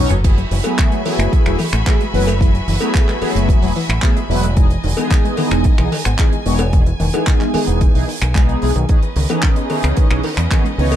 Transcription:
Already playing: F#3 B3 C#4 D#4 A4 B4 C#5 D#5
0.09 F#1 F#3, closed hi-hat, mid tom
0.24 E3 F#3 A3 B3 E4 F#4 G#4 E5 G#5 B5, kick, closed hi-hat, crash
0.38 F#3, closed hi-hat
0.51 F#1 E3, open hi-hat
0.64 F#3 A3 B3 E4 G#4, closed hi-hat, cowbell
0.78 E3, kick, clap, closed hi-hat
0.92 G#3, closed hi-hat
1.05 E3 F#3 A3 B3 E4 G#4, open hi-hat, cowbell
1.19 F#1 A3, finger snap, closed hi-hat
1.33 E3, kick, closed hi-hat
1.45 E1 F#3 A3 B3 E4 G#4, finger snap, closed hi-hat
1.59 E3, open hi-hat, cowbell
1.73 A1 A3, finger snap, closed hi-hat
1.86 E3 F#3 A3 B3 E4 G#4, kick, clap, closed hi-hat
2.00 G#3, closed hi-hat
2.13 F#1 E3 F#3 A3 B3 E4 B4, open hi-hat
2.27 A3, closed hi-hat, cowbell
2.40 E3 F#3 A3 B3 E4 G#4, kick, closed hi-hat
2.55 F#3, closed hi-hat
2.67 F#1 E3, open hi-hat
2.80 F#3 A3 B3 E4 G#4, closed hi-hat, cowbell
2.94 E3, kick, clap, closed hi-hat
3.08 G#3, clap, closed hi-hat
3.21 E3 F#3 A3 B3 E4 G#4, muted fingered electric bass stroke, open hi-hat, cowbell
3.35 F#1 A3, closed hi-hat
3.49 E3, kick, closed hi-hat
3.62 E1 F#3 A3 B3 E4 G#4, open hi-hat
3.76 E3, open hi-hat
3.89 A1 A3, finger snap, closed hi-hat
4.02 E3 F#3 A3 B3 E4 G#4, kick, clap, closed hi-hat
4.16 G#3, closed hi-hat
4.29 E1 E3 F#3 A3 B3 E4 B4, open hi-hat
4.43 A3, closed hi-hat
4.56 D#3 E3 G#3 B3 D#4 G#4 D#5 G#5, kick, closed hi-hat
4.70 E3, closed hi-hat
4.84 E1 D#3, open hi-hat
4.97 E3 G#3 B3 D#4 G#4, closed hi-hat, cowbell
5.10 D#3, kick, clap, closed hi-hat
5.25 G#3, closed hi-hat
5.37 D#3 E3 G#3 B3 D#4 G#4, open hi-hat, cowbell
5.51 E1 B3, finger snap, closed hi-hat
5.64 D#3, muted fingered electric bass stroke, kick, closed hi-hat
5.78 B1 E3 G#3 B3 D#4 G#4, finger snap, closed hi-hat
5.92 D#3, open hi-hat, cowbell
6.05 G#1 B3, finger snap, closed hi-hat
6.18 D#3 E3 G#3 B3 D#4 G#4, kick, clap, closed hi-hat
6.32 G#3, closed hi-hat
6.46 E1 D#3 E3 G#3 B3 D#4 C#5, open hi-hat
6.59 B3, closed hi-hat, cowbell
6.73 D#3 E3 G#3 B3 D#4 G#4, kick, closed hi-hat
6.86 E3, closed hi-hat
7.00 E1 D#3, open hi-hat
7.13 E3 G#3 B3 D#4 G#4, closed hi-hat, cowbell
7.27 D#3, kick, clap, closed hi-hat
7.41 G#3, clap, closed hi-hat
7.53 D#3 E3 G#3 B3 D#4 G#4, muted fingered electric bass stroke, open hi-hat, cowbell
7.67 E1 B3, closed hi-hat
7.81 D#3, kick, closed hi-hat
7.94 B1 E3 G#3 B3 D#4 G#4, open hi-hat
8.08 D#3, open hi-hat
8.22 B1 D#3, finger snap, closed hi-hat
8.34 E3 G#3 B3 D#4 G#4, kick, clap, closed hi-hat
8.49 D#4, closed hi-hat
8.61 B1 E3 G#3 B3 D#4 G#4, open hi-hat
8.76 B1 D#3, closed hi-hat
8.88 D#3 E3 B3 C#4 D#4 G#4 B4 D#5, kick, closed hi-hat
9.03 E3, closed hi-hat
9.16 C#2 D#3, open hi-hat
9.29 E3 B3 C#4 D#4 G#4, closed hi-hat, cowbell
9.42 D#3, kick, clap, closed hi-hat
9.56 G#3, closed hi-hat
9.70 D#3 E3 B3 C#4 D#4 G#4, open hi-hat, cowbell
9.83 C#2 B3, finger snap, closed hi-hat
9.97 D#3, kick, closed hi-hat
10.10 B1 E3 B3 C#4 D#4 G#4, finger snap, closed hi-hat
10.23 D#3, open hi-hat, cowbell
10.37 E2 B3, finger snap, closed hi-hat
10.50 D#3 E3 B3 C#4 D#4 G#4, kick, clap, closed hi-hat
10.65 G#3, closed hi-hat
10.78 C#2 D#3 E3 B3 C#4 D#4 C#5, open hi-hat
10.92 B3, closed hi-hat, cowbell

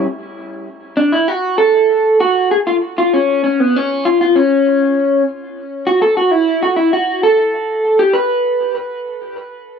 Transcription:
0.97 D4
1.12 E4
1.28 F#4
1.58 A4
2.21 F#4
2.51 G#4
2.67 F4
2.98 F4
3.13 C#4
3.44 C#4
3.60 B3
3.76 C#4
4.05 F4
4.21 F4
4.36 C#4
5.87 F#4
6.02 A4
6.17 F#4
6.31 E4
6.62 F#4
6.76 E4
6.93 F#4
7.23 A4
7.99 G4
8.13 B4

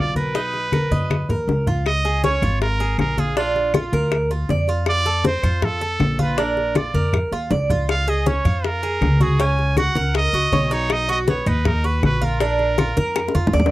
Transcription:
Already playing: B1 F4
0.00 D5
0.16 A#4 B4, high conga
0.35 D#4, high bongo, high conga
0.54 high bongo, high conga
0.72 A#4, high bongo, high conga, claves
0.91 F#2 D#5, high bongo, high conga
1.10 high bongo, high conga, claves
1.29 D#2 A#4, high bongo, low conga
1.48 C#2, high bongo, low bongo
1.67 F4, low conga
1.86 D#5, high bongo, high conga, claves
2.05 G#4, high bongo, high conga
2.24 C#4 C#5, high bongo, high conga
2.42 G#1 F4, high conga, low conga, claves
2.61 A#4, high bongo, high conga
2.80 G#4, high bongo, high conga
2.98 A#1 A#4, high bongo, low bongo, high conga, claves
3.18 F4 G#4, high bongo, high conga
3.37 D4 F4, high bongo
3.55 high bongo, high conga
3.74 F4, high bongo, high conga, claves
3.92 D2 A#4, high conga
4.12 high bongo, high conga, claves
4.31 F4, high bongo, high conga
4.49 F2 D5, high bongo, low bongo, high conga
4.68 F4, high bongo, high conga
4.86 D5, high bongo, high conga, claves
5.06 A4, high bongo, high conga
5.24 C4 C5, high bongo, high conga
5.43 F2 F4, high conga, low conga, claves
5.62 A4, high bongo, high conga, low conga
5.81 A4, high bongo, high conga
6.00 A#1, high bongo, low bongo, high conga, claves
6.19 F4 B4, high bongo, high conga
6.38 D4 A#4, high bongo
6.57 high bongo, high conga
6.75 F4 D5, high bongo, high conga, claves
6.94 F2 A#4, high conga
7.13 high bongo, low conga, claves
7.32 D#2 F4, high bongo
7.51 C#2 D5, high bongo, low bongo, low conga
7.70 F4, high bongo, low conga
7.89 F5, high bongo, high conga, claves
8.07 G#4 D#5, high bongo, high conga
8.26 C#4 C#5, high bongo, high conga
8.45 F2 F4, high conga, low conga, claves
8.64 A#4, high bongo, high conga
8.83 G#4, high bongo, high conga
9.01 C#2, high bongo, low bongo, high conga, claves
9.20 F#4 G#4, high bongo, high conga
9.39 C#4 G#5, high bongo, high conga
9.58 high bongo, high conga
9.77 F#4 F#5, high bongo, high conga, claves
9.95 C#2 A#4, high conga
10.15 D#5, high bongo, high conga, claves
10.33 C#2 F#4, high bongo, high conga
10.52 B1 C#5, high bongo, low bongo, high conga
10.71 D#4 C#5, high bongo, high conga
10.90 D#5, high bongo, high conga, claves
11.09 F#4 D#5, high bongo, high conga
11.28 B3 C#5, high bongo, high conga
11.46 D#2 D#4 B4, high conga, low conga, claves
11.65 A#4, high bongo, high conga, low conga
11.84 F#4 B4, high bongo, high conga
12.03 A#1 B4, high bongo, low bongo, high conga, claves
12.21 F4 A#4, high bongo, high conga
12.40 D4, high bongo, high conga
12.59 high bongo, high conga
12.78 F4, high bongo, high conga, claves
12.97 F2 A#4, high conga
13.16 high bongo, high conga, claves
13.28 high bongo
13.35 F2 F4, high conga
13.47 low conga
13.53 D#2 D5, low bongo
13.60 low conga
13.66 low bongo

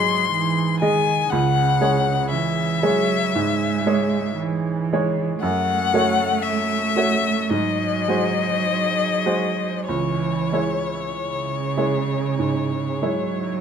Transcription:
Already playing: G#2 F#3 G#3 G#4 D#5 C6
0.31 E3
0.80 D#3 G#3 G#4 D#5 G#5
1.30 C#2 C#3 F#5
1.81 G#3 G#4 C#5
2.31 E3 E5
2.83 F#3 G#3 G#4 C#5
3.34 G#2 G#3
3.86 G#3 G#4 C#5
4.38 E3
4.93 G#3 G#4 C#5
5.42 F#2 A3 F#5
5.94 A3 F#4 C#5
6.43 E5
6.96 A3 F#4 C#5
7.49 G#2 F#3 D#5
8.08 G#3 F#4 C5
9.26 G#3 F#4 C5
9.87 C#2 E3 C#5
10.52 G#3 E4 C#5
11.16 C#3
11.77 G#3 E4 C#5
12.39 G#2
13.02 F#3 G#3 E4 C#5

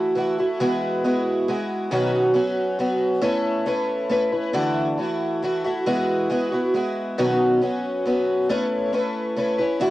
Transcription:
Already playing: E3 A3 E4 F#4
0.15 E3 A3 E4 F#4
0.38 A3 E4 F#4
0.60 E3 G#3 B3 E4 F#4
1.04 G#3 B3 E4 F#4
1.48 G#3 B3 E4 F#4
1.91 B2 D#3 F#3 B3 C#4 F#4
2.33 F#3 B3 C#4 F#4
2.79 F#3 B3 C#4 F#4
3.21 A3 C#4 E4 B4
3.66 A3 C#4 E4 B4
4.10 A3 C#4 E4 B4
4.32 C#4 E4 B4
4.53 D3 E3 A3 E4 F#4
4.98 E3 A3 E4 F#4
5.43 E3 A3 E4 F#4
5.65 A3 E4 F#4
5.86 E3 G#3 B3 E4 F#4
6.30 G#3 B3 E4 F#4
6.52 B3 E4 F#4
6.74 G#3 B3 E4 F#4
7.18 B2 D#3 F#3 B3 C#4 F#4
7.61 F#3 B3 C#4 F#4
8.05 F#3 B3 C#4 F#4
8.49 A3 C#4 E4 B4
8.92 A3 C#4 E4 B4
9.36 A3 C#4 E4 B4
9.58 C#4 E4 B4
9.80 D3 E3 A3 E4 F#4

